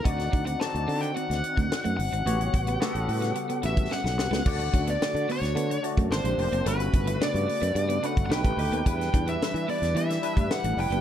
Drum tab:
CC |----------------|----------------|x---------------|----------------|
HH |xxxx-xoxxxxx-xox|xxxx-xoxxxxx----|-xxx-xoxxxxx-xox|xxxx-xoxxxxx-xox|
SD |-o--o----o--o---|----o--o----oooo|----o--o----o---|----o-------o---|
BD |o-o--------o----|--o--------o----|o-o--------o----|--o--------o-o--|

CC |----------------|
HH |xxxx-xoxxxxx-xox|
SD |-o--o--o-o--o---|
BD |o-o--------o----|